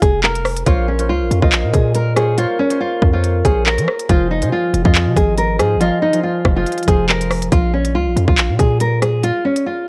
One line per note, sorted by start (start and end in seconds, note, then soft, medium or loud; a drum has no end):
0.02 0.64 F1 loud
0.02 0.22 G#4 medium
0.02 kick loud
0.02 closed hi-hat medium
0.23 0.64 A#4 medium
0.23 clap loud
0.35 closed hi-hat medium
0.45 cross-stick loud
0.45 open hi-hat medium
0.56 closed hi-hat medium
0.66 1.11 A#1 loud
0.66 0.86 A#3 medium
0.66 0.86 F4 medium
0.66 0.86 F4 loud
0.66 0.86 C5 medium
0.66 0.87 C#5 loud
0.66 kick loud
0.66 closed hi-hat medium
0.88 1.07 C#4 medium
0.98 1.25 A#3 medium
0.98 1.25 F4 medium
0.98 1.25 C5 medium
0.98 1.26 C#5 medium
0.98 closed hi-hat medium
1.09 1.22 C#2 loud
1.09 1.40 F4 medium
1.21 1.30 A#1 loud
1.31 1.42 F2 loud
1.31 closed hi-hat medium
1.41 1.65 A#1 loud
1.41 2.15 A#3 medium
1.41 2.16 F4 medium
1.41 1.72 F4 medium
1.41 2.16 C5 medium
1.41 3.21 D#5 medium
1.41 kick loud
1.52 clap loud
1.52 closed hi-hat medium
1.63 1.73 A#2 loud
1.73 2.46 A#2 loud
1.73 1.93 G#4 medium
1.73 kick loud
1.73 closed hi-hat medium
1.95 2.15 A#4 medium
1.95 closed hi-hat loud
2.16 2.30 A#3 medium
2.16 2.30 F4 medium
2.16 2.36 G#4 medium
2.16 2.30 C5 medium
2.16 2.31 C#5 medium
2.16 cross-stick loud
2.16 closed hi-hat medium
2.37 2.57 A#3 loud
2.37 2.58 F4 medium
2.37 2.57 F4 loud
2.37 2.58 C5 medium
2.37 2.58 C#5 loud
2.37 closed hi-hat medium
2.59 2.79 C#4 medium
2.70 2.96 A#3 medium
2.70 2.97 F4 medium
2.70 2.97 C5 medium
2.70 2.97 C#5 medium
2.70 closed hi-hat medium
2.81 3.11 F4 medium
3.02 3.43 F2 loud
3.02 kick loud
3.12 3.33 A#3 medium
3.12 3.33 F4 medium
3.12 3.43 F4 medium
3.12 3.33 C5 medium
3.12 3.33 C#5 medium
3.24 closed hi-hat medium
3.44 3.79 A#1 loud
3.44 3.84 A#3 medium
3.44 3.85 F4 medium
3.44 3.64 G#4 medium
3.44 3.85 C5 medium
3.44 3.85 C#5 medium
3.44 kick medium
3.44 closed hi-hat medium
3.66 4.07 A#4 medium
3.66 clap loud
3.78 3.87 F3 loud
3.78 closed hi-hat medium
3.88 cross-stick loud
3.99 closed hi-hat medium
4.09 4.44 F1 loud
4.09 4.40 F3 loud
4.09 4.29 F4 loud
4.09 4.29 G#4 medium
4.09 4.30 C5 loud
4.09 kick loud
4.09 closed hi-hat medium
4.31 4.50 D#4 medium
4.41 4.52 C3 loud
4.41 4.83 F3 medium
4.41 4.68 F4 medium
4.41 4.68 G#4 medium
4.41 4.68 C5 medium
4.41 closed hi-hat medium
4.52 4.83 F4 medium
4.74 4.84 F1 loud
4.74 closed hi-hat medium
4.84 5.08 F2 loud
4.84 5.57 F3 medium
4.84 5.58 F4 medium
4.84 5.14 F4 medium
4.84 5.59 G#4 medium
4.84 5.81 D#5 medium
4.84 kick loud
4.95 clap loud
4.95 closed hi-hat medium
5.06 5.16 C3 loud
5.16 5.61 G#1 loud
5.16 5.36 G#4 medium
5.16 kick medium
5.16 closed hi-hat medium
5.37 5.57 A#4 medium
5.37 closed hi-hat loud
5.58 5.77 G#2 loud
5.58 5.79 F3 medium
5.58 5.73 F4 medium
5.58 5.79 G#4 medium
5.58 5.73 G#4 medium
5.58 5.73 C5 medium
5.58 cross-stick loud
5.58 closed hi-hat medium
5.76 5.91 G#1 loud
5.80 6.11 F3 loud
5.80 6.00 F4 medium
5.80 6.00 F4 loud
5.80 6.01 G#4 medium
5.80 6.01 D#5 loud
5.80 closed hi-hat medium
6.02 6.21 D#4 medium
6.13 6.54 F3 medium
6.13 6.39 F4 medium
6.13 6.40 G#4 medium
6.13 6.40 C5 medium
6.13 closed hi-hat medium
6.23 6.54 F4 medium
6.45 6.65 F1 loud
6.45 kick loud
6.45 cross-stick medium
6.55 6.85 F3 medium
6.55 6.76 F4 medium
6.55 6.86 F4 medium
6.55 6.76 G#4 medium
6.55 6.76 C5 medium
6.66 closed hi-hat medium
6.72 closed hi-hat medium
6.78 closed hi-hat medium
6.83 7.57 F3 medium
6.83 closed hi-hat medium
6.87 7.49 F1 loud
6.87 7.27 F4 medium
6.87 7.07 G#4 medium
6.87 7.27 G#4 medium
6.87 7.28 C5 medium
6.87 kick loud
6.87 closed hi-hat medium
7.09 7.50 A#4 medium
7.09 clap loud
7.21 closed hi-hat medium
7.31 cross-stick loud
7.31 open hi-hat medium
7.42 closed hi-hat medium
7.52 7.96 A#1 loud
7.52 7.72 F4 loud
7.52 kick loud
7.52 closed hi-hat medium
7.73 7.93 C#4 medium
7.85 closed hi-hat medium
7.95 8.08 C#2 loud
7.95 8.26 F4 medium
8.06 8.16 A#1 loud
8.16 8.27 F2 loud
8.16 closed hi-hat medium
8.28 8.51 A#1 loud
8.28 8.57 F4 medium
8.28 kick loud
8.38 clap loud
8.38 closed hi-hat medium
8.49 8.59 A#2 loud
8.59 9.32 A#2 loud
8.59 8.79 G#4 medium
8.59 kick medium
8.59 closed hi-hat medium
8.80 9.00 A#4 medium
8.80 closed hi-hat loud
9.02 9.22 G#4 medium
9.02 cross-stick loud
9.02 closed hi-hat medium
9.23 9.43 F4 loud
9.23 closed hi-hat medium
9.45 9.64 C#4 medium
9.56 closed hi-hat medium
9.66 9.88 F4 medium